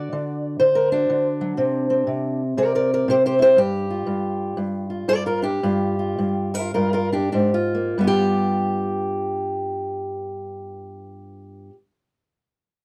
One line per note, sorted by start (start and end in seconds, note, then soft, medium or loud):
0.00 0.92 F#4 soft
0.00 0.59 D5 loud
0.13 0.59 D3 medium
0.60 1.08 D3 medium
0.60 1.26 C5 medium
0.75 0.92 A#4 medium
0.92 2.41 D4 medium
0.92 1.58 F#4 medium
1.10 1.57 D3 medium
1.41 1.57 F#3 medium
1.57 2.06 C3 medium
1.57 1.89 C4 soft
1.90 3.55 C4 medium
2.07 2.56 C3 medium
2.57 3.07 C3 medium
2.57 2.74 A#4 medium
2.57 2.75 D5 medium
2.75 2.91 A#4 medium
2.75 2.91 D5 medium
2.94 3.09 A#4 medium
2.94 3.09 D5 medium
3.08 3.57 C3 medium
3.08 3.14 G4 medium
3.08 3.25 C5 loud
3.26 3.34 G4 medium
3.26 3.41 C5 loud
3.39 3.55 E4 medium
3.39 3.49 G4 medium
3.39 3.58 C5 loud
3.56 4.06 G2 medium
3.56 4.58 G4 loud
3.90 4.89 F4 soft
4.06 4.56 G2 medium
4.57 5.07 G2 medium
4.90 5.25 F4 soft
5.08 5.61 G2 medium
5.08 5.14 A#4 medium
5.08 5.26 D5 loud
5.26 5.44 F4 medium
5.26 5.43 A#4 medium
5.42 5.59 D4 medium
5.42 6.55 G4 loud
5.63 6.17 G2 medium
5.63 5.97 F4 medium
5.99 6.53 F4 medium
6.19 6.74 G2 medium
6.54 6.73 F4 medium
6.54 6.73 A#4 medium
6.74 7.34 G2 medium
6.74 6.92 F4 medium
6.74 6.93 A#4 medium
6.93 7.12 F4 medium
6.93 7.13 A#4 medium
7.12 7.31 D4 medium
7.12 7.31 G4 medium
7.32 7.95 G#2 medium
7.32 7.54 D4 medium
7.32 7.54 G4 medium
7.54 7.97 F4 medium
7.75 7.98 A#3 medium
7.98 11.69 G2 medium
7.98 11.70 G3 medium
7.98 11.72 B3 medium
8.04 11.75 F4 medium
8.04 11.75 G4 loud